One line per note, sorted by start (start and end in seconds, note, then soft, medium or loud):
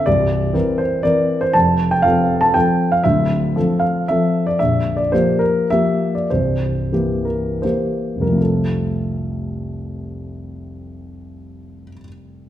0.06 0.54 C1 soft
0.06 0.54 C2 soft
0.06 0.80 D5 medium
0.54 1.01 E3 soft
0.54 1.01 C4 soft
0.54 1.02 A#4 soft
0.78 1.05 C5 medium
1.03 1.51 E3 soft
1.03 1.51 C4 soft
1.03 1.52 A#4 soft
1.03 1.43 D5 medium
1.41 1.55 C5 medium
1.53 2.02 F1 soft
1.53 2.02 F2 soft
1.53 1.91 A5 medium
1.91 2.04 G5 medium
2.02 2.51 F3 soft
2.02 2.51 C4 soft
2.02 2.51 A4 soft
2.02 2.41 F5 medium
2.41 2.54 A5 medium
2.54 3.01 F3 soft
2.54 3.02 C4 soft
2.54 3.02 A4 soft
2.54 2.93 G5 medium
2.92 3.05 F5 medium
3.04 3.54 D1 soft
3.04 3.54 D2 soft
3.04 3.81 E5 medium
3.56 4.05 F3 soft
3.56 4.05 C4 soft
3.56 4.06 A4 soft
3.80 4.08 F5 medium
4.08 4.57 F3 soft
4.08 4.56 C4 soft
4.08 4.57 A4 soft
4.08 4.47 E5 medium
4.47 4.60 D5 medium
4.59 5.11 A#0 soft
4.59 5.11 A#1 soft
4.59 4.98 E5 medium
4.97 5.11 D5 medium
5.12 5.66 F3 soft
5.12 5.67 A#3 soft
5.12 5.67 G4 soft
5.12 5.41 C5 medium
5.39 5.69 A#4 medium
5.70 6.26 F3 soft
5.70 6.27 A#3 soft
5.70 6.27 G4 soft
5.70 6.15 E5 medium
6.15 6.30 D5 soft
6.30 6.91 C1 soft
6.30 6.91 C2 soft
6.30 7.26 C5 soft
6.92 7.59 E3 soft
6.92 7.60 A#3 soft
6.92 7.60 G4 soft
7.25 7.62 A#4 soft
7.62 8.37 E3 soft
7.62 8.37 A#3 soft
7.62 8.37 G4 soft
7.62 8.23 C5 soft
8.16 11.82 F1 soft
8.20 11.87 C2 soft
8.20 8.40 A#4 soft
8.25 11.92 F3 soft
8.25 11.95 A3 soft
8.33 11.99 C4 soft
8.38 12.04 F4 soft
8.38 12.07 A4 soft